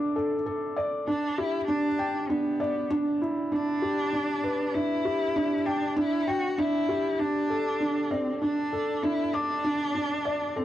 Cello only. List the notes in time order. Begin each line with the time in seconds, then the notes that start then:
1.07 D4
1.38 E4
1.68 D4
2.29 B3
3.52 D4
4.74 E4
5.66 D4
5.97 E4
6.28 F#4
6.58 E4
7.20 D4
8.11 C4
8.41 D4
9.03 E4
9.34 D4
10.56 C4